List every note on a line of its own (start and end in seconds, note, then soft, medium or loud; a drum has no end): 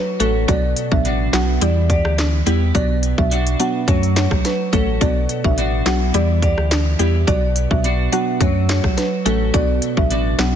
0.00 0.13 F#3 medium
0.00 0.54 F#3 medium
0.00 0.14 A3 medium
0.00 0.14 C#4 medium
0.00 0.14 F#4 loud
0.00 0.20 F#4 medium
0.20 0.46 A1 loud
0.20 0.36 F#3 medium
0.20 0.36 A3 medium
0.20 0.54 A3 medium
0.20 0.36 C#4 medium
0.20 0.55 C#4 medium
0.20 0.36 F#4 medium
0.20 0.55 F#4 medium
0.20 0.31 A4 medium
0.20 closed hi-hat medium
0.48 0.74 B1 loud
0.48 1.68 B2 loud
0.48 0.64 F#3 loud
0.48 0.64 B3 medium
0.48 0.64 D4 medium
0.48 0.64 F#4 loud
0.48 0.68 D5 loud
0.48 kick loud
0.48 closed hi-hat medium
0.77 closed hi-hat medium
0.91 1.29 A1 medium
0.91 1.30 F#3 medium
0.91 1.30 B3 medium
0.91 1.30 D4 medium
0.91 1.30 F#4 medium
0.91 1.01 E5 medium
0.91 kick medium
1.05 1.33 B3 medium
1.05 1.68 D4 medium
1.05 1.68 F#4 medium
1.05 closed hi-hat medium
1.33 1.59 B1 loud
1.33 1.59 F#3 medium
1.33 1.59 B3 medium
1.33 2.46 B3 medium
1.33 1.60 D4 medium
1.33 1.60 F#4 medium
1.33 1.44 F#5 medium
1.33 snare loud
1.33 clap medium
1.33 closed hi-hat medium
1.61 2.01 E2 loud
1.61 2.81 E3 medium
1.61 2.40 G3 medium
1.61 2.40 B3 medium
1.61 2.40 E4 medium
1.61 2.40 G4 loud
1.61 1.72 D5 medium
1.61 closed hi-hat medium
1.90 2.47 G4 medium
1.90 2.01 D5 medium
1.90 kick medium
1.90 closed hi-hat medium
2.05 2.42 D2 medium
2.05 cross-stick loud
2.18 snare loud
2.18 clap medium
2.18 closed hi-hat medium
2.46 2.72 E2 loud
2.46 2.62 G3 medium
2.46 2.62 B3 medium
2.46 2.81 B3 medium
2.46 2.62 E4 medium
2.46 2.81 E4 medium
2.46 2.62 G4 medium
2.46 2.81 G4 medium
2.46 closed hi-hat medium
2.75 3.14 B1 loud
2.75 3.94 B2 medium
2.75 2.90 F#3 medium
2.75 2.90 B3 medium
2.75 2.91 D4 medium
2.75 2.91 F#4 loud
2.75 2.95 D5 medium
2.75 kick loud
2.75 closed hi-hat medium
3.03 closed hi-hat medium
3.18 3.56 B1 loud
3.18 3.56 F#3 medium
3.18 3.57 B3 medium
3.18 3.57 D4 medium
3.18 3.57 F#4 medium
3.18 3.28 E5 medium
3.18 kick medium
3.31 3.59 B3 medium
3.31 3.94 D4 medium
3.31 4.16 F#4 medium
3.31 closed hi-hat medium
3.47 closed hi-hat medium
3.59 3.86 F#3 medium
3.59 3.86 B3 medium
3.59 3.94 B3 medium
3.59 3.86 D4 medium
3.59 3.86 F#4 medium
3.59 3.70 F#5 medium
3.59 closed hi-hat medium
3.88 4.27 F#2 loud
3.88 4.66 F#3 medium
3.88 5.07 F#3 medium
3.88 4.67 A3 medium
3.88 4.67 C#4 medium
3.88 4.67 F#4 loud
3.88 3.99 C#5 medium
3.88 kick loud
3.88 closed hi-hat medium
4.03 closed hi-hat medium
4.16 4.73 F#4 medium
4.16 4.27 C#5 medium
4.16 snare loud
4.16 clap loud
4.16 closed hi-hat medium
4.31 4.43 B1 loud
4.31 kick loud
4.31 cross-stick medium
4.45 4.55 B4 medium
4.45 snare medium
4.45 closed hi-hat medium
4.73 4.98 A1 loud
4.73 4.88 F#3 medium
4.73 4.89 A3 medium
4.73 5.07 A3 medium
4.73 4.89 C#4 medium
4.73 5.08 C#4 medium
4.73 4.89 F#4 medium
4.73 5.08 F#4 medium
4.73 4.83 A4 medium
4.73 kick medium
4.73 closed hi-hat medium
5.01 5.27 B1 loud
5.01 6.20 B2 medium
5.01 5.17 F#3 loud
5.01 5.17 B3 medium
5.01 5.17 D4 medium
5.01 5.17 F#4 loud
5.01 5.21 D5 loud
5.01 kick loud
5.01 closed hi-hat medium
5.29 closed hi-hat medium
5.44 5.82 A1 medium
5.44 5.83 F#3 medium
5.44 5.83 B3 medium
5.44 5.83 D4 medium
5.44 5.83 F#4 medium
5.44 5.54 E5 medium
5.44 kick medium
5.58 5.86 B3 medium
5.58 6.21 D4 medium
5.58 6.21 F#4 medium
5.58 closed hi-hat medium
5.86 6.12 B1 loud
5.86 6.12 F#3 medium
5.86 6.12 B3 medium
5.86 6.99 B3 medium
5.86 6.12 D4 medium
5.86 6.12 F#4 medium
5.86 5.97 F#5 medium
5.86 snare loud
5.86 clap loud
5.86 closed hi-hat medium
6.14 6.54 E2 loud
6.14 7.34 E3 medium
6.14 6.93 G3 loud
6.14 6.93 B3 medium
6.14 6.93 E4 medium
6.14 6.93 G4 loud
6.14 6.25 D5 medium
6.14 closed hi-hat medium
6.42 6.99 G4 medium
6.42 6.53 D5 medium
6.42 kick medium
6.42 closed hi-hat medium
6.58 6.95 D2 medium
6.58 cross-stick medium
6.71 snare loud
6.71 clap medium
6.71 closed hi-hat medium
6.99 7.25 E2 loud
6.99 7.15 G3 medium
6.99 7.15 B3 medium
6.99 7.34 B3 medium
6.99 7.15 E4 medium
6.99 7.34 E4 medium
6.99 7.15 G4 medium
6.99 7.34 G4 medium
6.99 closed hi-hat medium
7.27 7.67 B1 loud
7.27 8.47 B2 medium
7.27 7.43 F#3 medium
7.27 7.43 B3 medium
7.27 7.43 D4 medium
7.27 7.43 F#4 loud
7.27 7.47 D5 loud
7.27 kick loud
7.27 closed hi-hat medium
7.56 closed hi-hat medium
7.71 8.09 B1 loud
7.71 8.09 F#3 medium
7.71 8.09 B3 medium
7.71 8.09 D4 medium
7.71 8.09 F#4 medium
7.71 7.80 E5 medium
7.71 kick medium
7.84 8.11 B3 medium
7.84 8.47 D4 medium
7.84 8.69 F#4 medium
7.84 closed hi-hat medium
8.12 8.39 F#3 medium
8.12 8.39 B3 medium
8.12 8.47 B3 medium
8.12 8.39 D4 medium
8.12 8.39 F#4 medium
8.12 8.23 F#5 medium
8.12 closed hi-hat medium
8.41 8.80 F#2 loud
8.41 9.19 F#3 medium
8.41 9.60 F#3 medium
8.41 9.19 A3 medium
8.41 9.19 C#4 medium
8.41 9.19 F#4 loud
8.41 8.51 C#5 medium
8.41 kick loud
8.41 closed hi-hat medium
8.69 9.26 F#4 medium
8.69 8.80 C#5 medium
8.69 snare loud
8.69 clap loud
8.69 closed hi-hat medium
8.84 8.96 B1 medium
8.84 kick loud
8.84 cross-stick medium
8.97 9.08 B4 medium
8.97 snare medium
8.97 closed hi-hat medium
9.25 9.51 A1 loud
9.25 9.41 F#3 medium
9.25 9.41 A3 medium
9.25 9.60 A3 medium
9.25 9.41 C#4 medium
9.25 9.60 C#4 medium
9.25 9.42 F#4 medium
9.25 9.61 F#4 medium
9.25 9.36 A4 medium
9.25 closed hi-hat medium
9.54 9.80 B1 loud
9.54 10.56 B2 medium
9.54 9.70 F#3 loud
9.54 9.70 B3 medium
9.54 9.70 D4 medium
9.54 9.70 F#4 loud
9.54 9.74 D5 loud
9.54 kick loud
9.54 closed hi-hat medium
9.82 closed hi-hat medium
9.97 10.35 A1 medium
9.97 10.36 F#3 medium
9.97 10.36 B3 medium
9.97 10.36 D4 medium
9.97 10.36 F#4 medium
9.97 10.07 E5 medium
9.97 kick medium
10.11 10.38 B3 medium
10.11 10.56 D4 medium
10.11 10.56 F#4 medium
10.11 closed hi-hat medium
10.39 10.56 B1 medium
10.39 10.56 F#3 medium
10.39 10.56 B3 medium
10.39 10.56 D4 medium
10.39 10.56 F#4 medium
10.39 10.49 F#5 medium
10.39 snare loud
10.39 clap loud
10.39 closed hi-hat medium